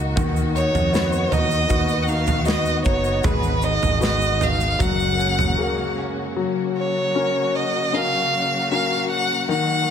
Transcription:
Already playing: C#2 D#3 A#3 D#4 F#4 A#4
0.16 D#2 D#3 B3 F#4, kick, floor tom, shaker
0.36 shaker
0.55 D#4 C#5, shaker
0.75 F2, floor tom, shaker
0.93 B3 D#4 F#4 B4, snare, shaker
1.13 shaker
1.32 D#2 D#4 D#5, floor tom, shaker
1.51 shaker
1.69 D#2 D#4 F#4 B4, kick, floor tom, shaker
1.88 shaker
2.03 F#5
2.08 D#4 F5, shaker
2.27 floor tom, shaker
2.45 B3 D#4 F#4 B4 D#5, snare, shaker
2.65 shaker
2.85 F#1 D#4 C#5, kick, shaker
3.04 shaker
3.23 G#1 G#2 D#3 G#3 G#4 B4, kick, floor tom, shaker
3.43 shaker
3.62 D#4 D#5, shaker
3.82 G#1, floor tom, shaker
4.00 B3 F#4 G#4 B4 D#5, snare, shaker
4.21 shaker
4.41 D#4 F5, floor tom, shaker
4.60 shaker
4.79 F#1 F#2 C#3 F#3 A#3 F#5, kick, floor tom, shaker
5.00 shaker
5.19 C#4, shaker
5.39 floor tom, shaker
5.57 A#3 F#4 G#4 A#4
5.98 C#4
6.36 C#3 F#3 A#3 F#4
6.77 C#5
7.15 C#4 F#4 A#4
7.56 D#5
7.93 C#4 F#4 A#4 F5
8.71 C#4 F#4 A#4 F5
9.11 F#5
9.48 D#3 F#5

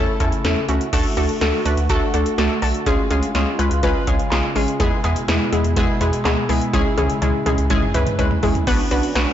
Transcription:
Already playing: C#3 A3 E4
0.20 E2 A3 C#4 E4 A4, kick, closed hi-hat
0.32 closed hi-hat
0.44 E2 A3 C#4 E4 A4, snare, closed hi-hat
0.69 C#2 A3 C#4 E4 F#4, closed hi-hat
0.81 closed hi-hat
0.93 D2 D3 A3 D4 F#4 A4, kick, closed hi-hat, crash
1.17 D2 A3 D4 F#4 A4, closed hi-hat
1.29 closed hi-hat
1.41 D2 A3 D4 F#4 A4, snare, closed hi-hat
1.65 D2 A3 D4 F#4 B4, closed hi-hat
1.77 D2, closed hi-hat
1.89 D2 A3 D4 F#4 A4, kick, closed hi-hat
2.14 D2 A3 D4 F#4 A4, closed hi-hat
2.26 closed hi-hat
2.38 C#2 A3 D4 F#4 A4, snare, closed hi-hat
2.62 B1 A3 D4 F#4 A4, open hi-hat
2.74 closed hi-hat
2.86 C#2 C#3 G#3 C#4 F4 G#4, kick, closed hi-hat
3.11 C#2 G#3 C#4 F4 G#4, closed hi-hat
3.23 closed hi-hat
3.35 C#2 G#3 C#4 F4 G#4, snare, closed hi-hat
3.59 C#2 G#3 C#4 F4 B4, closed hi-hat
3.71 C#2, closed hi-hat
3.83 C#2 G#3 C#4 F4 B4, kick, closed hi-hat
4.07 C#2 G#3 C#4 F4 G#4, kick, closed hi-hat
4.19 closed hi-hat
4.31 B1 G#3 C#4 F4 G#4, snare, clap, closed hi-hat
4.56 A1 G#3 C#4 F4 G#4, open hi-hat
4.68 closed hi-hat
4.80 E2 B2 G#3 B3 E4 G#4, kick, closed hi-hat
5.04 E2 G#3 B3 E4 G#4, closed hi-hat
5.16 closed hi-hat
5.28 E2 G#3 B3 E4 G#4, snare, closed hi-hat
5.52 E2 G#3 B3 E4 G#4, closed hi-hat
5.64 E2, closed hi-hat
5.76 E2 G#3 B3 E4 G#4, kick, closed hi-hat
6.01 E2 G#3 B3 E4 G#4, closed hi-hat
6.13 closed hi-hat
6.25 D2 G#3 B3 E4 G#4, snare, clap, closed hi-hat
6.49 C#2 G#3 B3 E4 G#4, open hi-hat
6.62 closed hi-hat
6.73 C#2 C#3 G#3 C#4 E4 G#4, kick, closed hi-hat, high tom
6.98 C#2 G#3 C#4 E4 G#4, closed hi-hat, high tom
7.10 closed hi-hat
7.22 C#2 G#3 C#4 E4 G#4, closed hi-hat, mid tom
7.46 C#2 G#3 C#4 E4 G#4, closed hi-hat, mid tom
7.58 C#2, closed hi-hat
7.70 C#2 G#3 C#4 E4 G#4, kick, closed hi-hat, mid tom
7.82 mid tom
7.94 C#2 G#3 C#4 E4 B4, closed hi-hat, mid tom
8.07 closed hi-hat, mid tom
8.19 B1 G#3 C#4 E4 B4, closed hi-hat, floor tom
8.31 floor tom
8.43 A1 G#3 C#4 E4 G#4, floor tom, open hi-hat
8.55 closed hi-hat, floor tom
8.67 B1 B3 C#4 D4 F#4 B4, kick, closed hi-hat, crash
8.91 B1 B3 D4 F#4 B4, closed hi-hat
9.03 closed hi-hat
9.15 B1 B3 D4 F#4 B4, snare, closed hi-hat

